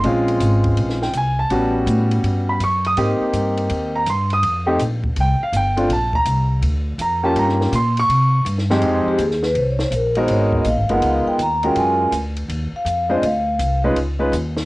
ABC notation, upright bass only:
X:1
M:4/4
L:1/8
Q:"Swing" 1/4=164
K:Fm
V:1 name="Upright bass" clef=bass
B,,,2 A,,,2 B,,,2 C,,2 | =A,,,2 =A,,2 G,,2 ^F,,2 | A,, z G,,2 E,,2 G,,2 | F,,2 B,,,2 C,, z G,,,2 |
B,,,2 C,,2 =D,,2 F,,2 | G,,2 B,,2 C,2 G,,2 | F,, z E,,2 C,,2 B,,,2 | A,,,2 (3B,,, A,,, _G,,, D,, z E,,2 |
_G,,2 =D,,2 E,, z F,,2 | =D,,2 C,,2 _D,,2 E,,2 |]